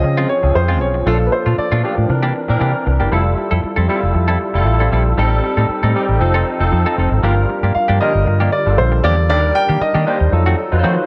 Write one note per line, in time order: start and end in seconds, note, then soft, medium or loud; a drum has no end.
0.00 0.25 C#3 loud
0.00 0.43 F3 medium
0.00 0.43 C4 medium
0.00 0.43 C#4 medium
0.00 0.44 G#4 loud
0.00 0.26 D#5 loud
0.00 muted clean electric guitar stroke soft
0.17 0.28 F3 medium
0.17 0.29 G#3 medium
0.17 0.29 C4 medium
0.17 0.29 F4 medium
0.29 0.56 C#5 medium
0.43 0.53 C#2 medium
0.43 0.97 F3 medium
0.43 0.97 C4 medium
0.43 0.97 C#4 medium
0.43 0.97 G#4 medium
0.43 muted clean electric guitar stroke soft
0.55 0.81 F2 loud
0.55 0.79 C5 medium
0.55 muted clean electric guitar stroke soft
0.68 0.80 F3 medium
0.68 0.80 G#3 medium
0.68 0.80 C4 medium
0.68 0.81 F4 medium
0.81 1.02 B1 medium
0.81 1.07 C#5 medium
0.81 muted clean electric guitar stroke soft
0.94 muted clean electric guitar stroke soft
1.06 1.28 A#1 loud
1.06 1.72 F3 medium
1.06 1.21 F3 medium
1.06 1.20 A3 medium
1.06 1.72 A#3 medium
1.06 1.13 C#4 medium
1.06 1.20 D4 medium
1.06 1.19 F4 medium
1.06 1.25 A4 medium
1.06 1.73 A4 medium
1.13 1.76 D4 medium
1.20 muted clean electric guitar stroke soft
1.27 1.32 B4 medium
1.32 1.59 C5 medium
1.32 muted clean electric guitar stroke soft
1.46 1.56 A#2 medium
1.46 1.57 F3 soft
1.46 1.56 A3 soft
1.46 1.56 D4 soft
1.46 1.56 F4 medium
1.58 2.06 D5 medium
1.58 muted clean electric guitar stroke soft
1.58 muted fingered electric bass stroke soft
1.72 1.82 A#2 loud
1.72 1.82 F3 medium
1.72 1.83 A3 medium
1.72 1.83 D4 medium
1.72 1.84 F4 medium
1.83 2.09 F3 medium
1.83 1.95 F3 medium
1.83 1.95 A3 medium
1.83 2.09 A#3 medium
1.83 2.08 D4 medium
1.83 1.96 D4 medium
1.83 1.96 F4 medium
1.83 2.10 G4 medium
1.98 2.07 A2 medium
1.98 muted clean electric guitar stroke soft
2.09 2.30 C3 loud
2.09 2.42 E3 medium
2.09 2.42 C4 medium
2.09 2.42 D4 medium
2.09 2.43 A#4 medium
2.09 muted clean electric guitar stroke soft
2.23 2.33 E3 medium
2.23 2.34 A#3 medium
2.23 2.34 D4 medium
2.23 2.35 G4 medium
2.35 muted clean electric guitar stroke soft
2.48 2.59 A#2 loud
2.48 3.03 E3 medium
2.48 3.03 C4 medium
2.48 3.03 D4 medium
2.48 3.03 A#4 medium
2.48 muted clean electric guitar stroke medium
2.60 2.72 C3 medium
2.60 2.75 E3 medium
2.60 2.74 A#3 medium
2.60 2.74 D4 medium
2.60 2.73 G4 medium
2.74 muted clean electric guitar stroke soft
2.86 2.98 C2 medium
2.86 muted clean electric guitar stroke soft
3.00 3.10 F#1 medium
3.00 3.11 E3 soft
3.00 3.10 A#3 soft
3.00 3.10 D4 soft
3.00 3.10 G4 medium
3.12 3.33 F1 loud
3.12 3.26 G3 medium
3.12 3.78 G3 medium
3.12 3.25 C4 medium
3.12 3.78 E4 medium
3.12 3.25 E4 medium
3.12 3.78 F4 medium
3.12 3.24 A4 medium
3.12 3.79 A4 loud
3.26 muted clean electric guitar stroke soft
3.37 muted clean electric guitar stroke soft
3.51 3.61 F2 medium
3.51 3.61 G3 medium
3.51 3.62 C4 soft
3.51 3.61 E4 medium
3.51 3.61 A4 medium
3.62 muted clean electric guitar stroke soft
3.62 muted fingered electric bass stroke medium
3.76 3.87 F2 medium
3.76 3.87 G3 medium
3.76 3.88 C4 medium
3.76 3.88 E4 medium
3.76 3.88 A4 medium
3.88 4.00 G3 medium
3.88 4.43 G3 medium
3.88 4.01 C4 medium
3.88 4.01 E4 medium
3.88 4.44 E4 medium
3.88 4.44 F4 medium
3.88 4.01 A4 medium
3.88 4.44 A4 medium
4.03 4.13 F1 medium
4.14 4.36 F2 loud
4.14 muted clean electric guitar stroke soft
4.28 4.39 G3 medium
4.28 4.39 C4 medium
4.28 4.39 E4 medium
4.28 4.40 A4 medium
4.54 4.66 F1 medium
4.54 5.08 G3 medium
4.54 5.08 E4 medium
4.54 5.09 F4 medium
4.54 5.09 A4 loud
4.54 muted clean electric guitar stroke soft
4.66 4.87 A1 loud
4.66 muted clean electric guitar stroke soft
4.80 4.90 G3 medium
4.80 4.91 C4 medium
4.80 4.90 E4 medium
4.80 4.90 A4 medium
4.92 5.13 A#1 loud
4.92 5.07 G3 medium
4.92 5.05 C4 medium
4.92 5.05 E4 medium
4.92 5.04 A4 medium
5.05 muted clean electric guitar stroke soft
5.17 5.39 A1 loud
5.17 5.84 G3 loud
5.17 5.32 G3 medium
5.17 5.32 C4 medium
5.17 5.84 C4 medium
5.17 5.84 D#4 medium
5.17 5.31 D#4 medium
5.17 5.84 A4 loud
5.17 5.30 A4 medium
5.32 muted clean electric guitar stroke soft
5.43 muted clean electric guitar stroke soft
5.57 5.67 A2 medium
5.57 5.68 G3 soft
5.57 5.68 C4 soft
5.57 5.67 D#4 medium
5.57 5.67 A4 medium
5.69 muted clean electric guitar stroke soft
5.69 muted fingered electric bass stroke soft
5.83 5.93 A2 loud
5.83 5.94 G3 medium
5.83 5.94 C4 medium
5.83 5.95 D#4 medium
5.83 5.95 A4 medium
5.95 6.20 G3 medium
5.95 6.06 G3 medium
5.95 6.19 C4 medium
5.95 6.07 C4 medium
5.95 6.20 D#4 medium
5.95 6.07 D#4 medium
5.95 6.21 G4 medium
5.95 6.07 A4 medium
6.09 6.19 A1 medium
6.20 6.42 F1 loud
6.20 6.53 F3 medium
6.20 6.54 C4 medium
6.20 6.54 D#4 medium
6.20 6.54 A4 medium
6.20 muted clean electric guitar stroke soft
6.34 6.45 F3 medium
6.34 6.46 C4 medium
6.34 6.46 D#4 medium
6.34 6.46 A4 medium
6.47 muted clean electric guitar stroke soft
6.59 6.70 F1 medium
6.59 7.14 F3 medium
6.59 7.14 C4 medium
6.59 7.14 D#4 medium
6.59 7.14 A4 medium
6.59 muted clean electric guitar stroke soft
6.72 6.84 F2 loud
6.72 muted clean electric guitar stroke soft
6.86 6.96 F3 medium
6.86 6.97 C4 medium
6.86 6.97 D#4 medium
6.86 6.98 A4 medium
6.98 7.09 F1 medium
6.98 7.09 F3 medium
6.98 7.10 C4 medium
6.98 7.10 D#4 medium
6.98 7.10 A4 medium
7.12 7.21 G#1 medium
7.23 7.44 G1 loud
7.23 7.38 F3 medium
7.23 7.90 G3 medium
7.23 7.37 A#3 medium
7.23 7.36 D4 medium
7.23 7.90 D4 medium
7.23 7.90 F4 medium
7.23 7.36 G4 medium
7.23 7.90 A#4 loud
7.37 muted clean electric guitar stroke soft
7.49 muted clean electric guitar stroke soft
7.63 7.73 G2 medium
7.63 7.73 F3 soft
7.63 7.74 A#3 soft
7.63 7.73 D4 medium
7.63 7.73 G4 medium
7.75 8.01 F5 medium
7.75 muted fingered electric bass stroke soft
7.88 7.99 G2 medium
7.88 7.99 F3 medium
7.88 8.00 A#3 medium
7.88 8.00 D4 medium
7.88 8.01 G4 medium
8.00 8.55 D3 medium
8.00 8.12 F3 medium
8.00 8.55 G3 medium
8.00 8.12 A#3 medium
8.00 8.13 D4 medium
8.00 8.55 F4 medium
8.00 8.13 G4 medium
8.00 8.55 A#4 medium
8.00 8.49 D#5 medium
8.14 8.25 G1 medium
8.14 muted clean electric guitar stroke soft
8.27 8.48 G2 loud
8.27 muted clean electric guitar stroke soft
8.40 8.51 F3 medium
8.40 8.51 A#3 medium
8.40 8.52 D4 medium
8.40 8.52 G4 medium
8.52 8.79 D5 medium
8.52 muted clean electric guitar stroke soft
8.66 8.76 G1 medium
8.66 9.20 G3 medium
8.66 9.20 D4 medium
8.66 9.20 F4 medium
8.66 9.21 A4 medium
8.66 muted clean electric guitar stroke soft
8.78 8.99 A#1 loud
8.78 9.04 C5 medium
8.78 muted clean electric guitar stroke soft
8.92 muted clean electric guitar stroke medium
9.04 9.29 E2 medium
9.04 9.18 F3 medium
9.04 9.18 A#3 loud
9.04 9.17 D4 medium
9.04 9.17 G4 medium
9.04 9.28 D5 medium
9.18 muted clean electric guitar stroke soft
9.29 9.50 D#2 loud
9.29 9.44 D#3 medium
9.29 9.95 G3 medium
9.29 9.43 A#3 medium
9.29 9.95 D4 medium
9.29 9.43 D4 medium
9.29 9.96 D#4 medium
9.29 9.42 G4 medium
9.29 9.36 A4 medium
9.29 9.56 D5 loud
9.36 9.99 A#4 medium
9.43 muted clean electric guitar stroke soft
9.55 9.79 G5 loud
9.55 muted clean electric guitar stroke soft
9.69 9.79 D#3 medium
9.69 9.79 D#3 soft
9.69 9.79 A#3 soft
9.69 9.79 D4 medium
9.69 9.79 G4 medium
9.81 10.29 D#5 medium
9.81 muted clean electric guitar stroke soft
9.81 muted fingered electric bass stroke soft
9.94 10.04 D#3 loud
9.94 10.05 D#3 medium
9.94 10.06 A#3 medium
9.94 10.06 D4 medium
9.94 10.06 G4 medium
10.06 10.18 D#3 medium
10.06 10.32 G3 medium
10.06 10.18 A#3 medium
10.06 10.32 D4 medium
10.06 10.18 D4 medium
10.06 10.31 D#4 medium
10.06 10.19 G4 medium
10.06 10.33 C5 medium
10.20 10.30 D#2 medium
10.20 muted clean electric guitar stroke medium
10.32 10.53 F2 loud
10.32 10.65 F#3 medium
10.32 10.65 D#4 medium
10.32 10.66 F4 medium
10.32 10.66 A4 medium
10.32 muted clean electric guitar stroke soft
10.46 10.57 D#3 medium
10.46 10.57 A3 medium
10.46 10.57 C4 medium
10.46 10.57 F#4 medium
10.72 10.82 F2 medium
10.72 11.06 F#3 medium
10.72 11.06 D#4 medium
10.72 11.06 F4 medium
10.72 10.78 B4 medium
10.72 muted clean electric guitar stroke soft
10.79 11.06 C5 loud
10.83 10.98 D#3 medium
10.83 10.95 F3 loud
10.83 10.97 A3 medium
10.83 10.96 C4 loud
10.83 10.96 F#4 medium
10.97 muted clean electric guitar stroke soft